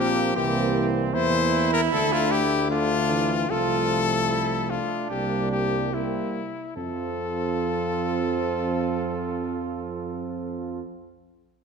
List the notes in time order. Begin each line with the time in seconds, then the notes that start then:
Already playing: A#1 F3 A#3 C4 G4
0.35 C2 E3 A#3 C4 G4
1.14 E2 E3 A#3 E4 C5
1.73 A#4
1.92 D2 D3 A3 A4
2.12 F4
2.31 G4
2.70 D3 A3 D4 F4
3.10 E3
3.49 C2 F3 A3 F4 A4
4.30 E4
4.70 D4 F4
5.10 C2 G3 A#3 G4
5.52 G4
5.93 G3 A#3 C4 E4
6.76 F2 F3 C4 F4 A4